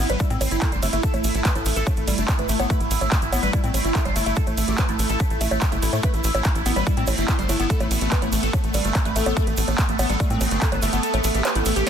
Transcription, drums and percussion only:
0.09 closed hi-hat, high bongo, shaker
0.20 kick, closed hi-hat, shaker
0.30 closed hi-hat, shaker
0.41 open hi-hat, ride, high bongo, shaker
0.51 closed hi-hat, shaker
0.62 kick, clap, closed hi-hat, shaker
0.72 closed hi-hat, shaker
0.83 open hi-hat, ride, high bongo, shaker
0.93 closed hi-hat, shaker
1.03 kick, closed hi-hat, shaker
1.14 closed hi-hat, high bongo, shaker
1.24 open hi-hat, ride, shaker
1.34 closed hi-hat, shaker
1.45 kick, clap, closed hi-hat, shaker
1.55 closed hi-hat, high bongo, shaker
1.66 open hi-hat, ride, shaker
1.76 closed hi-hat, shaker
1.87 kick, closed hi-hat, high bongo, shaker
1.96 closed hi-hat, shaker
2.07 open hi-hat, ride, shaker
2.18 closed hi-hat, shaker
2.28 kick, clap, closed hi-hat, high bongo, shaker
2.38 closed hi-hat, shaker
2.49 open hi-hat, ride, shaker
2.60 closed hi-hat, high bongo, shaker
2.70 kick, closed hi-hat, shaker
2.80 closed hi-hat, shaker
2.91 open hi-hat, ride, shaker
3.01 closed hi-hat, high bongo, shaker
3.12 kick, clap, closed hi-hat, shaker
3.22 closed hi-hat, shaker
3.33 open hi-hat, ride, high bongo, shaker
3.43 closed hi-hat, shaker
3.53 kick, closed hi-hat, shaker
3.64 closed hi-hat, shaker
3.74 open hi-hat, ride, high bongo, shaker
3.85 closed hi-hat, shaker
3.95 kick, clap, closed hi-hat, shaker
4.05 closed hi-hat, high bongo, shaker
4.16 open hi-hat, ride, shaker
4.26 closed hi-hat, shaker
4.36 kick, closed hi-hat, shaker
4.47 closed hi-hat, high bongo, shaker
4.57 open hi-hat, ride, shaker
4.68 closed hi-hat, shaker
4.78 kick, clap, closed hi-hat, high bongo, shaker
4.89 closed hi-hat, shaker
4.99 open hi-hat, ride, shaker
5.09 closed hi-hat, shaker
5.20 kick, closed hi-hat, high bongo, shaker
5.30 closed hi-hat, shaker
5.41 open hi-hat, ride, shaker
5.51 closed hi-hat, high bongo, shaker
5.61 kick, clap, closed hi-hat, shaker
5.72 closed hi-hat, shaker
5.82 open hi-hat, ride, shaker
5.93 closed hi-hat, high bongo, shaker
6.03 kick, closed hi-hat, high bongo, shaker
6.14 closed hi-hat, shaker
6.24 open hi-hat, ride, shaker
6.35 closed hi-hat, high bongo, shaker
6.44 kick, clap, closed hi-hat, shaker
6.55 closed hi-hat, shaker
6.66 open hi-hat, ride, shaker
6.76 closed hi-hat, high bongo, shaker
6.87 kick, closed hi-hat, shaker
6.97 closed hi-hat, shaker
7.07 open hi-hat, ride, high bongo, shaker
7.18 closed hi-hat, shaker
7.28 kick, clap, closed hi-hat, shaker
7.39 closed hi-hat, shaker
7.49 open hi-hat, ride, high bongo, shaker
7.60 closed hi-hat, shaker
7.70 kick, closed hi-hat, shaker
7.80 closed hi-hat, high bongo, shaker
7.91 open hi-hat, ride, shaker
8.01 closed hi-hat
8.12 kick, clap, closed hi-hat, shaker
8.22 closed hi-hat, high bongo, shaker
8.32 open hi-hat, ride, shaker
8.43 closed hi-hat, shaker
8.53 kick, closed hi-hat, high bongo, shaker
8.64 closed hi-hat, shaker
8.74 open hi-hat, ride, shaker
8.85 closed hi-hat, shaker
8.95 kick, clap, closed hi-hat, high bongo, shaker
9.05 closed hi-hat, shaker
9.16 open hi-hat, ride, shaker
9.26 closed hi-hat, high bongo, shaker
9.37 kick, closed hi-hat, shaker
9.47 closed hi-hat, shaker
9.57 open hi-hat, ride, shaker
9.68 closed hi-hat, high bongo, shaker
9.78 kick, clap, closed hi-hat, shaker
9.89 closed hi-hat, shaker
9.99 open hi-hat, ride, high bongo, shaker
10.10 closed hi-hat, shaker
10.20 kick, closed hi-hat, shaker
10.30 closed hi-hat, shaker
10.41 open hi-hat, ride, high bongo, shaker
10.51 closed hi-hat, shaker
10.62 kick, clap, closed hi-hat, shaker
10.72 closed hi-hat, high bongo, shaker
10.82 open hi-hat, ride, shaker
10.93 closed hi-hat, shaker
11.03 closed hi-hat, shaker
11.14 closed hi-hat, high bongo, shaker
11.24 open hi-hat, ride, shaker
11.35 closed hi-hat, shaker
11.45 clap, closed hi-hat, high bongo, shaker
11.55 closed hi-hat, shaker
11.65 open hi-hat, ride, shaker
11.76 closed hi-hat, shaker

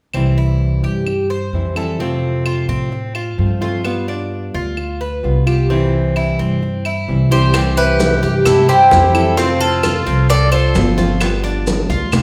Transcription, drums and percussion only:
0.14 claves
1.07 claves
1.76 claves
2.46 claves
3.15 claves
3.85 claves
4.77 claves
5.47 claves
6.16 claves
6.85 claves
7.54 high bongo, high conga, claves, maracas
7.77 high bongo, high conga, maracas
8.00 high bongo, high conga, maracas
8.23 high bongo, high conga, maracas
8.45 high bongo, high conga, low conga, claves, maracas
8.69 high conga, maracas
8.91 high bongo, low bongo, high conga, maracas
9.15 high bongo, claves, maracas
9.37 high bongo, high conga, maracas
9.61 high bongo, high conga, maracas
9.83 high bongo, high conga, claves, maracas
10.06 high bongo, high conga, maracas
10.30 high bongo, high conga, maracas
10.52 high conga, claves, maracas
10.75 high bongo, low bongo, high conga, maracas
10.98 high bongo, high conga, maracas
11.21 high bongo, high conga, claves, maracas
11.44 high bongo, high conga, maracas
11.67 high bongo, high conga, maracas
11.90 high bongo, high conga, maracas
12.12 high bongo, high conga, low conga, claves, maracas

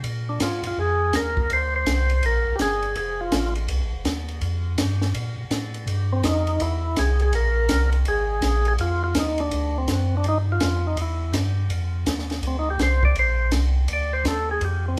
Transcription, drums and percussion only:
0.04 ride
0.40 snare, hi-hat pedal, ride
0.63 ride
1.13 snare, hi-hat pedal, ride
1.37 kick
1.50 ride
1.86 snare, hi-hat pedal, ride
2.10 ride
2.23 ride
2.59 snare, hi-hat pedal, ride
2.82 ride
2.95 ride
3.32 snare, hi-hat pedal, ride
3.55 ride
3.68 ride
4.05 snare, hi-hat pedal, ride
4.28 ride
4.41 ride
4.78 snare, hi-hat pedal, ride
5.02 snare
5.14 ride
5.51 snare, hi-hat pedal, ride
5.74 ride
5.87 ride
6.23 snare, hi-hat pedal, ride
6.47 ride
6.60 ride
6.96 snare, hi-hat pedal, ride
7.19 ride
7.33 ride
7.69 snare, hi-hat pedal, ride
7.92 ride
8.05 ride
8.42 snare, hi-hat pedal, ride
8.65 ride
8.78 ride
9.15 snare, hi-hat pedal, ride
9.38 ride
9.51 ride
9.88 snare, hi-hat pedal, ride
10.24 ride
10.60 snare, hi-hat pedal, ride
10.97 ride
11.33 snare, hi-hat pedal, ride
11.70 ride
12.06 snare, hi-hat pedal, ride
12.19 snare
12.30 snare, ride
12.43 ride
12.79 snare, hi-hat pedal, ride
13.03 kick
13.15 ride
13.51 snare, hi-hat pedal, ride
13.88 ride
14.25 snare, hi-hat pedal, ride
14.61 ride

